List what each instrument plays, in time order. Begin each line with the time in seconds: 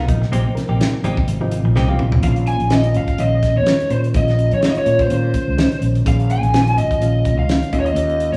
0.07 fretless electric bass A#1, reed electric piano C3 F3 A#3 D#4, muted clean electric guitar stroke, kick, closed hi-hat
0.22 muted clean electric guitar stroke, snare
0.32 fretless electric bass A#1, clean electric guitar G#3 C4 D#4 G4, reed electric piano C5, closed hi-hat
0.46 muted clean electric guitar stroke
0.55 reed electric piano C3 F3 A#3 C4 A#4, muted fretless electric bass stroke, snare, closed hi-hat
0.69 fretless electric bass A#1, clean electric guitar C4 D#4 G4
0.80 muted clean electric guitar stroke, snare, closed hi-hat
0.93 muted fretless electric bass stroke, muted clean electric guitar stroke
1.04 fretless electric bass G#1, reed electric piano C3 F3 A#3 D4, clean electric guitar G#3 C4 D#4 G4, closed hi-hat
1.17 muted fretless electric bass stroke, muted clean electric guitar stroke, kick
1.27 fretless electric bass G#1, closed hi-hat
1.40 reed electric piano C3 F3 A#3 D#4, muted clean electric guitar stroke
1.52 closed hi-hat
1.65 fretless electric bass A#1, muted clean electric guitar stroke
1.76 fretless electric bass C2, clean electric guitar G#3 C4 D#4 G4, snare
1.88 reed electric piano C3 F3 A#3 F4, clean electric guitar C4 D#4 G4, high tom
1.99 fretless electric bass A#1, muted clean electric guitar stroke, mid tom
2.12 muted clean electric guitar stroke, floor tom
2.23 fretless electric bass A#1, reed electric piano D#3 G#3 C#4 F4, lead electric guitar F5, kick, closed hi-hat
2.36 closed hi-hat
2.47 lead electric guitar G#5, closed hi-hat
2.60 fretless electric bass A#1, closed hi-hat
2.70 reed electric piano D#3 G#3 C#4 F4, lead electric guitar D#5, snare, closed hi-hat
2.83 closed hi-hat
2.94 fretless electric bass G#1, lead electric guitar F5, closed hi-hat
3.08 kick, closed hi-hat
3.18 fretless electric bass A#1, reed electric piano D#3 G#3 C#4 D#4, lead electric guitar D#5, closed hi-hat
3.43 kick, snare, closed hi-hat
3.56 fretless electric bass F2, lead electric guitar C#5
3.65 reed electric piano D#3 G#3 C#4 D#4, snare, closed hi-hat
3.80 closed hi-hat
3.90 fretless electric bass A#2, lead electric guitar C5, closed hi-hat
4.04 closed hi-hat
4.14 fretless electric bass A#1, reed electric piano D#3 G#3 C#4 F4, lead electric guitar D#5, kick, closed hi-hat
4.28 snare, closed hi-hat
4.39 closed hi-hat
4.51 fretless electric bass F2, lead electric guitar C#5, closed hi-hat
4.61 reed electric piano D#3 G#3 C#4 F4, snare, closed hi-hat
4.66 lead electric guitar C#5
4.71 lead electric guitar D#5, closed hi-hat
4.75 lead electric guitar C#5, muted fretless electric bass stroke
4.86 fretless electric bass A#2, closed hi-hat
4.99 lead electric guitar C5, kick, closed hi-hat
5.09 fretless electric bass A#2, reed electric piano D#3 G#3 C#4 F4, closed hi-hat
5.34 muted fretless electric bass stroke, kick, closed hi-hat
5.48 fretless electric bass C#2
5.57 reed electric piano D#3 G#3 C#4 D#4, snare, closed hi-hat
5.72 closed hi-hat
5.81 fretless electric bass A#1, closed hi-hat
5.95 closed hi-hat
6.05 fretless electric bass A#1, reed electric piano D#3 G#3 C#4 G#4, lead electric guitar F5, kick, closed hi-hat
6.20 closed hi-hat
6.30 lead electric guitar G#5, closed hi-hat
6.43 fretless electric bass A#1, closed hi-hat
6.54 reed electric piano D#3 G#3 C#4 F4, snare, closed hi-hat
6.67 closed hi-hat
6.77 fretless electric bass G#1, lead electric guitar D#5, closed hi-hat
6.91 kick, closed hi-hat
7.00 fretless electric bass A#1, reed electric piano D#3 G#3 C#4 F4, closed hi-hat
7.25 kick, closed hi-hat
7.37 fretless electric bass C#2, lead electric guitar F5
7.48 reed electric piano D#3 G#3 C#4 D#4, snare, closed hi-hat
7.63 closed hi-hat
7.73 fretless electric bass D#2, reed electric piano D#3 G#3 C#4 F4, lead electric guitar D#5, kick, closed hi-hat
7.80 lead electric guitar C#5
7.86 lead electric guitar D#5, closed hi-hat
7.96 fretless electric bass D#2, closed hi-hat
8.09 closed hi-hat
8.20 closed hi-hat
8.33 fretless electric bass A#1, lead electric guitar C#5, closed hi-hat